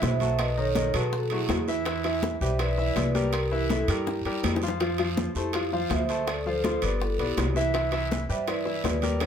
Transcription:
Already playing: E3 E4 E5
0.02 B1 C5 E5, high bongo, low bongo, high conga, high timbale, low timbale, short guiro
0.20 F#3 F#4 A4, high conga, high timbale, short guiro
0.39 B4 D#5, high bongo, high conga, high timbale, long guiro
0.57 D#3 D#4 A4 C#5 D#5, high conga
0.75 D#3 D#4 D#5, high bongo, high conga, high timbale, low timbale, short guiro
0.94 B2 F#3 F#4 G#4 A4 B4, high bongo, high conga, high timbale, short guiro
1.13 F#4 A4, high bongo, high conga, long guiro
1.30 F#3 A3 E4 F#4 G#4, high bongo, high conga, high timbale
1.49 E2, high bongo, low bongo, high conga, high timbale, low timbale, short guiro
1.68 E3 E4 E5, high bongo, high conga, short guiro
1.85 E3 E4 E5, high bongo, high conga, high timbale, long guiro
2.04 E3 E4 E5, high conga, high timbale
2.22 high bongo, high conga, low timbale, short guiro
2.41 B1 G3 G4 B4 C5 E5, short guiro
2.59 E3 E4 B4 D5 E5, high bongo, high conga, high timbale, long guiro
2.78 E3 E4 E5, high conga
2.95 C2 B4 D5, high bongo, low bongo, high conga, high timbale, low timbale, short guiro
3.14 G3 G4 A#4, high conga, high timbale, short guiro
3.33 G4 A#4, high bongo, high timbale, long guiro
3.52 E3 E4 E5, high conga
3.69 E3 E4 A4 E5, high bongo, high conga, high timbale, low timbale, short guiro
3.88 G2 G3 E4 G4 A#4, high bongo, high conga, high timbale, short guiro
4.07 high bongo, high conga, long guiro
4.25 G2 G3 G4 A#4, high conga, high timbale
4.43 F2, low bongo, high conga, high timbale, low timbale, short guiro
4.56 low bongo
4.62 F3 F4 F5, high conga, short guiro
4.68 low bongo
4.80 F3 F4 F5, high bongo, high conga, high timbale, long guiro
4.98 F3 F4 F5, high conga, high timbale
5.17 high bongo, high conga, low timbale, short guiro
5.35 F2 A3 E4 G4 A4 C5, short guiro
5.53 F3 F4 F5, high bongo, high conga, high timbale, long guiro
5.72 F3 F4 F5, high conga
5.90 D2 C5 E5, high bongo, low bongo, high conga, high timbale, low timbale, short guiro
6.09 A3 A4 C5, high timbale, short guiro
6.27 A4 D5, high bongo, high conga, high timbale, long guiro
6.46 F3 F4 A4 C5 F5, high conga
6.64 F3 F4 F5, high bongo, high conga, high timbale, low timbale, short guiro
6.82 G1 B3 B4 D5, high bongo, high conga, high timbale, short guiro
7.00 F4 A4, high bongo, high conga, long guiro
7.19 B1 B3 E4 G4 B4 D5, high bongo, high conga, high timbale
7.37 C2, high bongo, low bongo, high conga, high timbale, low timbale, short guiro
7.56 E3 E4 E5, high bongo, high conga, short guiro
7.74 E3 E4 E5, high bongo, high conga, high timbale, long guiro
7.92 E3 E4 E5, high conga, high timbale
8.11 high bongo, high conga, low timbale, short guiro
8.29 G2 G3 G4 B4 C5 E5, short guiro
8.47 E3 E4 B4 D5 E5, high bongo, high conga, high timbale, long guiro
8.65 E3 E4 E5, high conga
8.84 D#2 B4 D5, high bongo, low bongo, high conga, high timbale, low timbale, short guiro
9.02 G3 G4 A#4, high conga, high timbale, short guiro
9.20 A#4 C#5, high bongo, high conga, high timbale, long guiro

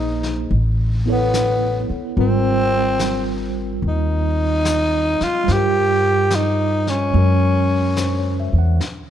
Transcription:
Already playing: A#1 A#3 D#4 G#4 C5
0.23 snare
0.51 A1, brush sweep
1.06 B3 E4 A4
1.10 B3 C#5
1.34 snare, hi-hat pedal
1.89 muted upright bass stroke
2.17 G#1 G3 C4 F4 A#4, brush sweep
2.99 snare, hi-hat pedal
3.81 D#2, brush sweep
3.88 D#4
4.65 snare, hi-hat pedal
5.21 F4, muted upright bass stroke, snare
5.44 G3 C5, brush sweep, snare
5.48 G2 F4
5.52 G4 A#4
6.30 snare, hi-hat pedal
6.35 D#4
6.87 C#4, snare
7.13 F#2 G#3 C#4 F#4, brush sweep
7.18 A#4
7.96 C5, snare, hi-hat pedal
8.19 C#5
8.40 E5
8.53 E2
8.58 F#5
8.80 brush sweep, snare

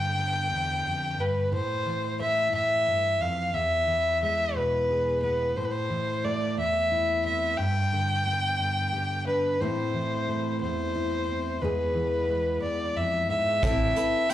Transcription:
Already playing: G2 D3 G5
0.19 B3
0.51 E2
0.86 F2
1.19 G2 B4
1.52 A2 C5
1.86 E3
2.20 A3 E5
2.53 A2 E5
2.87 G2
3.21 F2 F5
3.54 E2 E5
3.88 E3
4.23 G#3 E5
4.55 B2 B4
4.90 G#4
5.23 B3 B4
5.57 A2 C5
5.65 B4
5.70 C5
5.90 E3
6.24 A3 D5
6.57 E2 E5
6.92 E4
7.25 C4 E5
7.58 G2 G5
7.93 D3
8.27 B3
8.59 G2
8.93 G4
9.27 D4 B4
9.60 A2 E3 A3 C4 E4 C5
9.94 E3
10.28 A3
10.61 E2 C5
10.95 E4
11.29 C4
11.61 E2 E3 G#3 B3 G#4 B4
11.94 E3
12.29 G#3
12.62 E2 D5
12.96 F2 E5
13.29 G#2 E5
13.63 A1 A2 E3 C4 E4 A4, kick, closed hi-hat
13.96 C4 E4 A4 B4, closed hi-hat
14.30 E3 C4 E4 C5 G5, closed hi-hat

